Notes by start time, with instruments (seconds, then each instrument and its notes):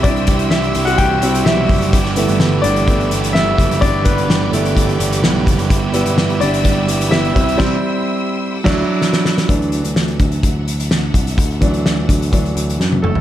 Already playing: overdriven electric guitar C3 E3 G3 E4 G4, grand piano E4 E5, string section G4 E5 C6 E6
0.03 picked electric bass C2, grand piano G3 C4 D4 E4 D5, kick, closed hi-hat
0.16 closed hi-hat
0.27 overdriven electric guitar G3 E4 G4, kick, closed hi-hat
0.39 closed hi-hat
0.50 overdriven electric guitar C3 E3 G3 E4 G4, grand piano E4 E5, snare
0.64 closed hi-hat
0.75 picked electric bass C2, overdriven electric guitar G3 E4 G4, closed hi-hat
0.85 grand piano F#4 F#5, closed hi-hat
0.98 overdriven electric guitar E3 G3 E4 G4, grand piano G4 G5, kick, closed hi-hat
1.21 picked electric bass C2, grand piano G3 C4 E4, overdriven electric guitar G3 E4 G4, closed hi-hat
1.35 closed hi-hat
1.45 picked electric bass B1, overdriven electric guitar C3 E3 G3 E4 G4, grand piano E4 E5, snare
1.69 picked electric bass F#1, kick, open hi-hat
1.82 closed hi-hat
1.93 picked electric bass G1, overdriven electric guitar G2 D3 E3 G3 B3 G4, string section D5 B5, kick, closed hi-hat
2.05 snare
2.16 overdriven electric guitar E3 G3 B3 G4, grand piano A3 B3 E4, closed hi-hat
2.28 picked electric bass G1, closed hi-hat
2.40 overdriven electric guitar G2 D3 E3 G3 B3 G4, snare
2.62 picked electric bass G1, overdriven electric guitar E3 G3 B3 G4, grand piano D4 D5, closed hi-hat
2.76 closed hi-hat
2.87 overdriven electric guitar E3 G3 B3 G4, grand piano A3 B3 E4, kick, closed hi-hat
3.00 closed hi-hat
3.11 overdriven electric guitar E3 G3 B3 G4, closed hi-hat
3.24 closed hi-hat
3.33 overdriven electric guitar G2 D3 E3 G3 B3 G4, grand piano E4 E5, snare
3.58 picked electric bass F#1, kick, closed hi-hat
3.71 closed hi-hat
3.81 picked electric bass G1, overdriven electric guitar G2 D3 E3 G3 B3 G4, grand piano D4 D5, string section D6, kick, closed hi-hat
4.04 overdriven electric guitar E3 G3 B3 G4, grand piano B3 B4, kick, closed hi-hat
4.18 closed hi-hat
4.28 overdriven electric guitar G2 D3 E3 G3 B3 G4, snare
4.52 picked electric bass G1, overdriven electric guitar E3 G3 B3 G4, grand piano A3 B3 E4, closed hi-hat
4.65 closed hi-hat
4.75 overdriven electric guitar E3 G3 B3 G4, kick, closed hi-hat
4.89 closed hi-hat
4.99 picked electric bass G1, overdriven electric guitar E3 G3 B3 G4, closed hi-hat
5.12 closed hi-hat
5.22 picked electric bass B1, overdriven electric guitar G2 D3 E3 G3 B3 G4, snare
5.47 picked electric bass F#1, kick, closed hi-hat
5.59 closed hi-hat
5.69 picked electric bass G1, overdriven electric guitar G3 B3 E4 G4, string section G4 E5 E6, kick, closed hi-hat
5.93 grand piano G3 B3 E4, overdriven electric guitar B3 E4 G4, closed hi-hat
6.06 picked electric bass G1, closed hi-hat
6.17 overdriven electric guitar G3 B3 E4 G4, snare
6.30 closed hi-hat
6.40 picked electric bass G1, overdriven electric guitar B3 E4 G4, grand piano D4 D5, closed hi-hat
6.54 closed hi-hat
6.63 overdriven electric guitar G3 B3 E4 G4, kick, closed hi-hat
6.87 overdriven electric guitar B3 E4 G4, closed hi-hat
7.01 closed hi-hat
7.10 grand piano G3 B3 E4 E5, overdriven electric guitar G3 B3 E4 G4, snare
7.25 closed hi-hat
7.34 picked electric bass C2, overdriven electric guitar C3 E3 G3 E4 G4, grand piano G3 C4 E4, string section G4 C6, kick, closed hi-hat
7.49 closed hi-hat
7.57 picked electric bass C2, overdriven electric guitar C3 E3 G3 E4 G4, grand piano G3 C4 E4, kick, snare, crash
8.55 string section A4 F#5 D6
8.64 picked electric bass D2, grand piano F#3 D4 E4, overdriven electric guitar F#3 A3 D4 E4, kick, snare, crash
9.02 snare
9.13 snare
9.25 snare
9.38 snare
9.49 picked electric bass D2, string section D3 D4 E5 F#5, grand piano E3 F#3 D4, kick, closed hi-hat
9.62 closed hi-hat
9.72 closed hi-hat
9.84 picked electric bass D2, closed hi-hat
9.96 snare
10.08 closed hi-hat
10.20 picked electric bass D2, kick, closed hi-hat
10.32 closed hi-hat
10.43 kick, closed hi-hat
10.68 closed hi-hat
10.80 closed hi-hat
10.91 snare
11.14 picked electric bass C2, kick, closed hi-hat
11.27 closed hi-hat
11.38 picked electric bass D2, kick, closed hi-hat
11.51 closed hi-hat
11.61 grand piano E3 F#3 D4, kick, closed hi-hat
11.74 closed hi-hat
11.86 snare
12.09 picked electric bass D2, kick, closed hi-hat
12.22 closed hi-hat
12.31 grand piano E3 F#3 D4, kick, closed hi-hat
12.45 closed hi-hat
12.56 picked electric bass D2, closed hi-hat
12.70 closed hi-hat
12.80 picked electric bass F#2, snare
12.92 high tom
13.02 picked electric bass F#1, grand piano A3 A4, mid tom
13.15 floor tom